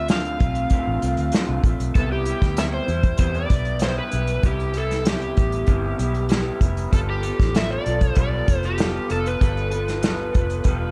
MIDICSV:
0, 0, Header, 1, 5, 480
1, 0, Start_track
1, 0, Key_signature, 0, "major"
1, 0, Tempo, 621762
1, 1505, Time_signature, 4, 2, 24, 8
1, 8423, End_track
2, 0, Start_track
2, 0, Title_t, "Electric slide guitar"
2, 0, Program_c, 0, 29
2, 0, Note_on_c, 0, 76, 91
2, 79, Note_off_c, 0, 76, 0
2, 82, Note_on_c, 0, 77, 77
2, 1243, Note_off_c, 0, 77, 0
2, 1511, Note_on_c, 0, 69, 76
2, 1632, Note_off_c, 0, 69, 0
2, 1635, Note_on_c, 0, 67, 87
2, 1995, Note_on_c, 0, 76, 92
2, 2001, Note_off_c, 0, 67, 0
2, 2034, Note_off_c, 0, 76, 0
2, 2113, Note_on_c, 0, 72, 81
2, 2459, Note_off_c, 0, 72, 0
2, 2468, Note_on_c, 0, 72, 83
2, 2588, Note_on_c, 0, 74, 86
2, 2590, Note_off_c, 0, 72, 0
2, 2951, Note_off_c, 0, 74, 0
2, 2954, Note_on_c, 0, 72, 74
2, 3073, Note_off_c, 0, 72, 0
2, 3076, Note_on_c, 0, 71, 78
2, 3440, Note_on_c, 0, 67, 80
2, 3441, Note_off_c, 0, 71, 0
2, 3680, Note_off_c, 0, 67, 0
2, 3683, Note_on_c, 0, 69, 79
2, 3921, Note_off_c, 0, 69, 0
2, 3924, Note_on_c, 0, 67, 70
2, 5084, Note_off_c, 0, 67, 0
2, 5356, Note_on_c, 0, 69, 83
2, 5395, Note_off_c, 0, 69, 0
2, 5479, Note_on_c, 0, 67, 96
2, 5837, Note_on_c, 0, 76, 98
2, 5843, Note_off_c, 0, 67, 0
2, 5955, Note_off_c, 0, 76, 0
2, 5965, Note_on_c, 0, 74, 91
2, 6306, Note_off_c, 0, 74, 0
2, 6316, Note_on_c, 0, 74, 82
2, 6679, Note_on_c, 0, 67, 76
2, 6681, Note_off_c, 0, 74, 0
2, 7038, Note_off_c, 0, 67, 0
2, 7041, Note_on_c, 0, 69, 81
2, 7156, Note_off_c, 0, 69, 0
2, 7158, Note_on_c, 0, 71, 72
2, 8423, Note_off_c, 0, 71, 0
2, 8423, End_track
3, 0, Start_track
3, 0, Title_t, "Clean electric guitar"
3, 0, Program_c, 1, 27
3, 61, Note_on_c, 1, 50, 48
3, 74, Note_on_c, 1, 57, 53
3, 80, Note_on_c, 1, 60, 48
3, 85, Note_on_c, 1, 65, 58
3, 293, Note_off_c, 1, 65, 0
3, 302, Note_on_c, 1, 65, 52
3, 303, Note_off_c, 1, 50, 0
3, 307, Note_off_c, 1, 60, 0
3, 309, Note_off_c, 1, 57, 0
3, 316, Note_on_c, 1, 60, 41
3, 327, Note_on_c, 1, 57, 36
3, 544, Note_off_c, 1, 65, 0
3, 545, Note_off_c, 1, 57, 0
3, 551, Note_off_c, 1, 60, 0
3, 551, Note_on_c, 1, 50, 69
3, 555, Note_on_c, 1, 57, 75
3, 564, Note_on_c, 1, 60, 72
3, 568, Note_on_c, 1, 65, 86
3, 775, Note_off_c, 1, 65, 0
3, 785, Note_on_c, 1, 65, 52
3, 788, Note_off_c, 1, 50, 0
3, 790, Note_off_c, 1, 57, 0
3, 791, Note_off_c, 1, 60, 0
3, 801, Note_on_c, 1, 60, 46
3, 811, Note_on_c, 1, 57, 38
3, 1025, Note_off_c, 1, 65, 0
3, 1025, Note_on_c, 1, 50, 67
3, 1027, Note_off_c, 1, 57, 0
3, 1033, Note_off_c, 1, 60, 0
3, 1036, Note_on_c, 1, 57, 65
3, 1045, Note_on_c, 1, 60, 63
3, 1049, Note_on_c, 1, 65, 78
3, 1263, Note_off_c, 1, 65, 0
3, 1265, Note_off_c, 1, 50, 0
3, 1271, Note_off_c, 1, 57, 0
3, 1272, Note_on_c, 1, 65, 50
3, 1275, Note_off_c, 1, 60, 0
3, 1285, Note_on_c, 1, 60, 46
3, 1298, Note_on_c, 1, 57, 52
3, 1509, Note_off_c, 1, 65, 0
3, 1512, Note_on_c, 1, 48, 62
3, 1514, Note_off_c, 1, 57, 0
3, 1515, Note_off_c, 1, 60, 0
3, 1517, Note_on_c, 1, 55, 64
3, 1521, Note_on_c, 1, 59, 74
3, 1528, Note_on_c, 1, 64, 70
3, 1738, Note_off_c, 1, 64, 0
3, 1747, Note_on_c, 1, 64, 45
3, 1748, Note_off_c, 1, 48, 0
3, 1751, Note_off_c, 1, 55, 0
3, 1753, Note_off_c, 1, 59, 0
3, 1763, Note_on_c, 1, 59, 43
3, 1774, Note_on_c, 1, 55, 40
3, 1985, Note_off_c, 1, 55, 0
3, 1985, Note_on_c, 1, 48, 46
3, 1986, Note_off_c, 1, 64, 0
3, 1994, Note_off_c, 1, 59, 0
3, 1994, Note_on_c, 1, 55, 58
3, 2003, Note_on_c, 1, 59, 55
3, 2011, Note_on_c, 1, 64, 54
3, 2214, Note_off_c, 1, 64, 0
3, 2223, Note_on_c, 1, 64, 46
3, 2225, Note_off_c, 1, 48, 0
3, 2230, Note_off_c, 1, 55, 0
3, 2234, Note_off_c, 1, 59, 0
3, 2246, Note_on_c, 1, 55, 39
3, 2460, Note_off_c, 1, 55, 0
3, 2464, Note_off_c, 1, 64, 0
3, 2464, Note_on_c, 1, 48, 67
3, 2469, Note_on_c, 1, 55, 71
3, 2476, Note_on_c, 1, 59, 76
3, 2482, Note_on_c, 1, 64, 72
3, 2699, Note_off_c, 1, 64, 0
3, 2704, Note_off_c, 1, 48, 0
3, 2707, Note_off_c, 1, 55, 0
3, 2708, Note_on_c, 1, 64, 45
3, 2711, Note_off_c, 1, 59, 0
3, 2723, Note_on_c, 1, 59, 46
3, 2733, Note_on_c, 1, 55, 36
3, 2944, Note_off_c, 1, 55, 0
3, 2947, Note_off_c, 1, 64, 0
3, 2952, Note_off_c, 1, 59, 0
3, 2953, Note_on_c, 1, 55, 63
3, 2961, Note_on_c, 1, 59, 63
3, 2966, Note_on_c, 1, 64, 66
3, 3168, Note_off_c, 1, 64, 0
3, 3177, Note_on_c, 1, 64, 55
3, 3180, Note_off_c, 1, 59, 0
3, 3189, Note_off_c, 1, 55, 0
3, 3189, Note_on_c, 1, 59, 47
3, 3201, Note_on_c, 1, 55, 42
3, 3421, Note_off_c, 1, 64, 0
3, 3424, Note_off_c, 1, 55, 0
3, 3424, Note_on_c, 1, 48, 61
3, 3427, Note_off_c, 1, 59, 0
3, 3433, Note_on_c, 1, 55, 70
3, 3437, Note_on_c, 1, 59, 72
3, 3443, Note_on_c, 1, 64, 77
3, 3651, Note_off_c, 1, 64, 0
3, 3661, Note_on_c, 1, 64, 46
3, 3664, Note_off_c, 1, 59, 0
3, 3665, Note_off_c, 1, 48, 0
3, 3669, Note_off_c, 1, 55, 0
3, 3673, Note_on_c, 1, 59, 41
3, 3682, Note_on_c, 1, 55, 37
3, 3895, Note_on_c, 1, 48, 51
3, 3897, Note_off_c, 1, 55, 0
3, 3902, Note_off_c, 1, 59, 0
3, 3903, Note_off_c, 1, 64, 0
3, 3906, Note_on_c, 1, 55, 48
3, 3911, Note_on_c, 1, 59, 60
3, 3919, Note_on_c, 1, 64, 61
3, 4128, Note_off_c, 1, 64, 0
3, 4138, Note_on_c, 1, 64, 43
3, 4140, Note_off_c, 1, 48, 0
3, 4143, Note_off_c, 1, 59, 0
3, 4146, Note_off_c, 1, 55, 0
3, 4152, Note_on_c, 1, 59, 44
3, 4163, Note_on_c, 1, 55, 39
3, 4377, Note_off_c, 1, 55, 0
3, 4380, Note_on_c, 1, 48, 66
3, 4382, Note_off_c, 1, 59, 0
3, 4382, Note_off_c, 1, 64, 0
3, 4386, Note_on_c, 1, 55, 68
3, 4391, Note_on_c, 1, 59, 68
3, 4397, Note_on_c, 1, 64, 71
3, 4608, Note_off_c, 1, 64, 0
3, 4617, Note_on_c, 1, 64, 51
3, 4621, Note_off_c, 1, 59, 0
3, 4623, Note_off_c, 1, 48, 0
3, 4626, Note_off_c, 1, 55, 0
3, 4631, Note_on_c, 1, 59, 48
3, 4643, Note_on_c, 1, 55, 37
3, 4854, Note_off_c, 1, 55, 0
3, 4861, Note_off_c, 1, 59, 0
3, 4861, Note_off_c, 1, 64, 0
3, 4863, Note_on_c, 1, 55, 70
3, 4870, Note_on_c, 1, 59, 64
3, 4879, Note_on_c, 1, 64, 75
3, 5092, Note_off_c, 1, 64, 0
3, 5101, Note_on_c, 1, 64, 54
3, 5104, Note_off_c, 1, 55, 0
3, 5105, Note_off_c, 1, 59, 0
3, 5115, Note_on_c, 1, 59, 55
3, 5125, Note_on_c, 1, 55, 48
3, 5327, Note_off_c, 1, 55, 0
3, 5336, Note_off_c, 1, 59, 0
3, 5336, Note_on_c, 1, 55, 65
3, 5343, Note_off_c, 1, 64, 0
3, 5346, Note_on_c, 1, 59, 67
3, 5351, Note_on_c, 1, 65, 80
3, 5354, Note_on_c, 1, 69, 79
3, 5567, Note_off_c, 1, 69, 0
3, 5576, Note_on_c, 1, 69, 48
3, 5581, Note_off_c, 1, 55, 0
3, 5583, Note_off_c, 1, 65, 0
3, 5586, Note_off_c, 1, 59, 0
3, 5592, Note_on_c, 1, 65, 39
3, 5603, Note_on_c, 1, 59, 41
3, 5815, Note_off_c, 1, 59, 0
3, 5815, Note_on_c, 1, 55, 48
3, 5821, Note_off_c, 1, 65, 0
3, 5821, Note_off_c, 1, 69, 0
3, 5824, Note_on_c, 1, 59, 55
3, 5831, Note_on_c, 1, 65, 57
3, 5838, Note_on_c, 1, 69, 60
3, 6048, Note_off_c, 1, 69, 0
3, 6058, Note_on_c, 1, 69, 50
3, 6061, Note_off_c, 1, 55, 0
3, 6062, Note_off_c, 1, 65, 0
3, 6065, Note_off_c, 1, 59, 0
3, 6071, Note_on_c, 1, 65, 43
3, 6081, Note_on_c, 1, 59, 36
3, 6296, Note_on_c, 1, 55, 67
3, 6298, Note_off_c, 1, 59, 0
3, 6301, Note_off_c, 1, 65, 0
3, 6302, Note_off_c, 1, 69, 0
3, 6307, Note_on_c, 1, 59, 70
3, 6310, Note_on_c, 1, 65, 73
3, 6314, Note_on_c, 1, 69, 73
3, 6521, Note_off_c, 1, 69, 0
3, 6530, Note_on_c, 1, 69, 47
3, 6533, Note_off_c, 1, 65, 0
3, 6541, Note_off_c, 1, 55, 0
3, 6543, Note_on_c, 1, 65, 46
3, 6546, Note_off_c, 1, 59, 0
3, 6554, Note_on_c, 1, 59, 43
3, 6776, Note_off_c, 1, 59, 0
3, 6776, Note_on_c, 1, 55, 54
3, 6778, Note_off_c, 1, 69, 0
3, 6784, Note_off_c, 1, 65, 0
3, 6786, Note_on_c, 1, 59, 62
3, 6794, Note_on_c, 1, 65, 55
3, 6800, Note_on_c, 1, 69, 67
3, 7006, Note_off_c, 1, 69, 0
3, 7015, Note_on_c, 1, 69, 52
3, 7019, Note_off_c, 1, 65, 0
3, 7021, Note_off_c, 1, 55, 0
3, 7025, Note_off_c, 1, 59, 0
3, 7029, Note_on_c, 1, 65, 44
3, 7040, Note_on_c, 1, 59, 48
3, 7255, Note_off_c, 1, 59, 0
3, 7258, Note_on_c, 1, 55, 64
3, 7260, Note_off_c, 1, 69, 0
3, 7261, Note_off_c, 1, 65, 0
3, 7265, Note_on_c, 1, 59, 75
3, 7271, Note_on_c, 1, 65, 80
3, 7277, Note_on_c, 1, 69, 77
3, 7485, Note_off_c, 1, 69, 0
3, 7494, Note_on_c, 1, 69, 45
3, 7502, Note_off_c, 1, 55, 0
3, 7503, Note_off_c, 1, 65, 0
3, 7505, Note_off_c, 1, 59, 0
3, 7512, Note_on_c, 1, 65, 42
3, 7523, Note_on_c, 1, 59, 39
3, 7734, Note_on_c, 1, 55, 53
3, 7739, Note_off_c, 1, 59, 0
3, 7740, Note_off_c, 1, 69, 0
3, 7744, Note_off_c, 1, 65, 0
3, 7748, Note_on_c, 1, 59, 65
3, 7753, Note_on_c, 1, 65, 59
3, 7762, Note_on_c, 1, 69, 64
3, 7965, Note_off_c, 1, 69, 0
3, 7974, Note_on_c, 1, 69, 57
3, 7979, Note_off_c, 1, 55, 0
3, 7979, Note_off_c, 1, 65, 0
3, 7986, Note_off_c, 1, 59, 0
3, 7988, Note_on_c, 1, 65, 52
3, 8001, Note_on_c, 1, 59, 48
3, 8213, Note_off_c, 1, 59, 0
3, 8217, Note_on_c, 1, 55, 85
3, 8219, Note_off_c, 1, 69, 0
3, 8222, Note_off_c, 1, 65, 0
3, 8222, Note_on_c, 1, 59, 83
3, 8231, Note_on_c, 1, 65, 83
3, 8234, Note_on_c, 1, 69, 88
3, 8423, Note_off_c, 1, 55, 0
3, 8423, Note_off_c, 1, 59, 0
3, 8423, Note_off_c, 1, 65, 0
3, 8423, Note_off_c, 1, 69, 0
3, 8423, End_track
4, 0, Start_track
4, 0, Title_t, "Fingered electric bass"
4, 0, Program_c, 2, 33
4, 0, Note_on_c, 2, 38, 81
4, 276, Note_off_c, 2, 38, 0
4, 314, Note_on_c, 2, 35, 72
4, 502, Note_off_c, 2, 35, 0
4, 673, Note_on_c, 2, 33, 82
4, 766, Note_off_c, 2, 33, 0
4, 793, Note_on_c, 2, 36, 74
4, 886, Note_off_c, 2, 36, 0
4, 908, Note_on_c, 2, 38, 75
4, 1003, Note_off_c, 2, 38, 0
4, 1148, Note_on_c, 2, 36, 77
4, 1243, Note_off_c, 2, 36, 0
4, 1265, Note_on_c, 2, 33, 80
4, 1361, Note_off_c, 2, 33, 0
4, 1389, Note_on_c, 2, 35, 83
4, 1483, Note_off_c, 2, 35, 0
4, 1511, Note_on_c, 2, 36, 83
4, 1796, Note_off_c, 2, 36, 0
4, 1869, Note_on_c, 2, 38, 81
4, 2155, Note_off_c, 2, 38, 0
4, 2225, Note_on_c, 2, 40, 85
4, 2417, Note_off_c, 2, 40, 0
4, 2464, Note_on_c, 2, 40, 89
4, 2656, Note_off_c, 2, 40, 0
4, 2706, Note_on_c, 2, 35, 79
4, 3090, Note_off_c, 2, 35, 0
4, 3189, Note_on_c, 2, 35, 72
4, 3380, Note_off_c, 2, 35, 0
4, 3425, Note_on_c, 2, 36, 97
4, 4114, Note_off_c, 2, 36, 0
4, 4152, Note_on_c, 2, 33, 78
4, 4341, Note_off_c, 2, 33, 0
4, 4385, Note_on_c, 2, 31, 80
4, 4577, Note_off_c, 2, 31, 0
4, 4626, Note_on_c, 2, 35, 86
4, 5010, Note_off_c, 2, 35, 0
4, 5103, Note_on_c, 2, 29, 85
4, 5296, Note_off_c, 2, 29, 0
4, 5350, Note_on_c, 2, 31, 87
4, 5636, Note_off_c, 2, 31, 0
4, 5712, Note_on_c, 2, 33, 77
4, 5997, Note_off_c, 2, 33, 0
4, 6070, Note_on_c, 2, 35, 76
4, 6260, Note_off_c, 2, 35, 0
4, 6304, Note_on_c, 2, 35, 86
4, 6497, Note_off_c, 2, 35, 0
4, 6548, Note_on_c, 2, 29, 84
4, 6931, Note_off_c, 2, 29, 0
4, 7029, Note_on_c, 2, 29, 74
4, 7219, Note_off_c, 2, 29, 0
4, 7268, Note_on_c, 2, 31, 93
4, 7955, Note_off_c, 2, 31, 0
4, 7993, Note_on_c, 2, 29, 76
4, 8181, Note_off_c, 2, 29, 0
4, 8224, Note_on_c, 2, 28, 81
4, 8416, Note_off_c, 2, 28, 0
4, 8423, End_track
5, 0, Start_track
5, 0, Title_t, "Drums"
5, 65, Note_on_c, 9, 42, 82
5, 76, Note_on_c, 9, 38, 99
5, 142, Note_off_c, 9, 42, 0
5, 153, Note_off_c, 9, 38, 0
5, 192, Note_on_c, 9, 42, 32
5, 269, Note_off_c, 9, 42, 0
5, 309, Note_on_c, 9, 42, 53
5, 313, Note_on_c, 9, 36, 86
5, 386, Note_off_c, 9, 42, 0
5, 390, Note_off_c, 9, 36, 0
5, 424, Note_on_c, 9, 42, 49
5, 501, Note_off_c, 9, 42, 0
5, 537, Note_on_c, 9, 42, 73
5, 546, Note_on_c, 9, 36, 81
5, 615, Note_off_c, 9, 42, 0
5, 624, Note_off_c, 9, 36, 0
5, 788, Note_on_c, 9, 42, 62
5, 866, Note_off_c, 9, 42, 0
5, 904, Note_on_c, 9, 42, 45
5, 981, Note_off_c, 9, 42, 0
5, 1017, Note_on_c, 9, 42, 68
5, 1038, Note_on_c, 9, 38, 101
5, 1094, Note_off_c, 9, 42, 0
5, 1115, Note_off_c, 9, 38, 0
5, 1263, Note_on_c, 9, 36, 88
5, 1264, Note_on_c, 9, 42, 56
5, 1340, Note_off_c, 9, 36, 0
5, 1341, Note_off_c, 9, 42, 0
5, 1389, Note_on_c, 9, 42, 53
5, 1466, Note_off_c, 9, 42, 0
5, 1506, Note_on_c, 9, 42, 78
5, 1508, Note_on_c, 9, 36, 95
5, 1583, Note_off_c, 9, 42, 0
5, 1585, Note_off_c, 9, 36, 0
5, 1740, Note_on_c, 9, 42, 73
5, 1818, Note_off_c, 9, 42, 0
5, 1867, Note_on_c, 9, 36, 86
5, 1869, Note_on_c, 9, 42, 46
5, 1873, Note_on_c, 9, 38, 30
5, 1945, Note_off_c, 9, 36, 0
5, 1946, Note_off_c, 9, 42, 0
5, 1950, Note_off_c, 9, 38, 0
5, 1982, Note_on_c, 9, 42, 84
5, 1993, Note_on_c, 9, 38, 101
5, 2059, Note_off_c, 9, 42, 0
5, 2070, Note_off_c, 9, 38, 0
5, 2224, Note_on_c, 9, 42, 52
5, 2301, Note_off_c, 9, 42, 0
5, 2341, Note_on_c, 9, 42, 51
5, 2344, Note_on_c, 9, 36, 93
5, 2418, Note_off_c, 9, 42, 0
5, 2421, Note_off_c, 9, 36, 0
5, 2451, Note_on_c, 9, 42, 71
5, 2462, Note_on_c, 9, 36, 90
5, 2528, Note_off_c, 9, 42, 0
5, 2539, Note_off_c, 9, 36, 0
5, 2580, Note_on_c, 9, 42, 33
5, 2658, Note_off_c, 9, 42, 0
5, 2699, Note_on_c, 9, 42, 68
5, 2704, Note_on_c, 9, 36, 91
5, 2777, Note_off_c, 9, 42, 0
5, 2781, Note_off_c, 9, 36, 0
5, 2818, Note_on_c, 9, 42, 42
5, 2895, Note_off_c, 9, 42, 0
5, 2928, Note_on_c, 9, 42, 79
5, 2949, Note_on_c, 9, 38, 100
5, 3005, Note_off_c, 9, 42, 0
5, 3026, Note_off_c, 9, 38, 0
5, 3177, Note_on_c, 9, 42, 66
5, 3254, Note_off_c, 9, 42, 0
5, 3298, Note_on_c, 9, 42, 51
5, 3375, Note_off_c, 9, 42, 0
5, 3421, Note_on_c, 9, 42, 65
5, 3424, Note_on_c, 9, 36, 99
5, 3499, Note_off_c, 9, 42, 0
5, 3501, Note_off_c, 9, 36, 0
5, 3547, Note_on_c, 9, 42, 35
5, 3624, Note_off_c, 9, 42, 0
5, 3656, Note_on_c, 9, 42, 63
5, 3733, Note_off_c, 9, 42, 0
5, 3789, Note_on_c, 9, 42, 46
5, 3793, Note_on_c, 9, 38, 30
5, 3866, Note_off_c, 9, 42, 0
5, 3870, Note_off_c, 9, 38, 0
5, 3901, Note_on_c, 9, 42, 75
5, 3912, Note_on_c, 9, 38, 105
5, 3978, Note_off_c, 9, 42, 0
5, 3989, Note_off_c, 9, 38, 0
5, 4027, Note_on_c, 9, 42, 32
5, 4104, Note_off_c, 9, 42, 0
5, 4143, Note_on_c, 9, 42, 59
5, 4150, Note_on_c, 9, 36, 88
5, 4221, Note_off_c, 9, 42, 0
5, 4227, Note_off_c, 9, 36, 0
5, 4263, Note_on_c, 9, 42, 49
5, 4340, Note_off_c, 9, 42, 0
5, 4373, Note_on_c, 9, 42, 72
5, 4383, Note_on_c, 9, 36, 77
5, 4450, Note_off_c, 9, 42, 0
5, 4461, Note_off_c, 9, 36, 0
5, 4625, Note_on_c, 9, 42, 68
5, 4702, Note_off_c, 9, 42, 0
5, 4743, Note_on_c, 9, 42, 41
5, 4820, Note_off_c, 9, 42, 0
5, 4855, Note_on_c, 9, 42, 72
5, 4876, Note_on_c, 9, 38, 94
5, 4932, Note_off_c, 9, 42, 0
5, 4953, Note_off_c, 9, 38, 0
5, 5102, Note_on_c, 9, 36, 93
5, 5103, Note_on_c, 9, 42, 67
5, 5179, Note_off_c, 9, 36, 0
5, 5180, Note_off_c, 9, 42, 0
5, 5226, Note_on_c, 9, 42, 52
5, 5303, Note_off_c, 9, 42, 0
5, 5347, Note_on_c, 9, 42, 82
5, 5348, Note_on_c, 9, 36, 100
5, 5424, Note_off_c, 9, 42, 0
5, 5425, Note_off_c, 9, 36, 0
5, 5581, Note_on_c, 9, 42, 70
5, 5658, Note_off_c, 9, 42, 0
5, 5710, Note_on_c, 9, 36, 91
5, 5715, Note_on_c, 9, 42, 49
5, 5719, Note_on_c, 9, 38, 30
5, 5787, Note_off_c, 9, 36, 0
5, 5793, Note_off_c, 9, 42, 0
5, 5796, Note_off_c, 9, 38, 0
5, 5825, Note_on_c, 9, 42, 78
5, 5836, Note_on_c, 9, 38, 120
5, 5902, Note_off_c, 9, 42, 0
5, 5914, Note_off_c, 9, 38, 0
5, 6066, Note_on_c, 9, 42, 62
5, 6143, Note_off_c, 9, 42, 0
5, 6182, Note_on_c, 9, 42, 50
5, 6186, Note_on_c, 9, 36, 85
5, 6260, Note_off_c, 9, 42, 0
5, 6263, Note_off_c, 9, 36, 0
5, 6294, Note_on_c, 9, 42, 76
5, 6305, Note_on_c, 9, 36, 91
5, 6371, Note_off_c, 9, 42, 0
5, 6382, Note_off_c, 9, 36, 0
5, 6545, Note_on_c, 9, 42, 75
5, 6547, Note_on_c, 9, 36, 84
5, 6622, Note_off_c, 9, 42, 0
5, 6624, Note_off_c, 9, 36, 0
5, 6662, Note_on_c, 9, 42, 43
5, 6740, Note_off_c, 9, 42, 0
5, 6776, Note_on_c, 9, 42, 73
5, 6797, Note_on_c, 9, 38, 90
5, 6853, Note_off_c, 9, 42, 0
5, 6874, Note_off_c, 9, 38, 0
5, 7023, Note_on_c, 9, 42, 67
5, 7100, Note_off_c, 9, 42, 0
5, 7148, Note_on_c, 9, 42, 51
5, 7225, Note_off_c, 9, 42, 0
5, 7266, Note_on_c, 9, 42, 65
5, 7267, Note_on_c, 9, 36, 86
5, 7343, Note_off_c, 9, 42, 0
5, 7344, Note_off_c, 9, 36, 0
5, 7389, Note_on_c, 9, 42, 30
5, 7466, Note_off_c, 9, 42, 0
5, 7499, Note_on_c, 9, 42, 62
5, 7576, Note_off_c, 9, 42, 0
5, 7628, Note_on_c, 9, 42, 48
5, 7632, Note_on_c, 9, 38, 33
5, 7705, Note_off_c, 9, 42, 0
5, 7709, Note_off_c, 9, 38, 0
5, 7740, Note_on_c, 9, 42, 78
5, 7751, Note_on_c, 9, 38, 116
5, 7817, Note_off_c, 9, 42, 0
5, 7829, Note_off_c, 9, 38, 0
5, 7985, Note_on_c, 9, 42, 60
5, 7991, Note_on_c, 9, 36, 95
5, 8063, Note_off_c, 9, 42, 0
5, 8068, Note_off_c, 9, 36, 0
5, 8104, Note_on_c, 9, 42, 47
5, 8181, Note_off_c, 9, 42, 0
5, 8213, Note_on_c, 9, 42, 71
5, 8222, Note_on_c, 9, 36, 86
5, 8290, Note_off_c, 9, 42, 0
5, 8299, Note_off_c, 9, 36, 0
5, 8423, End_track
0, 0, End_of_file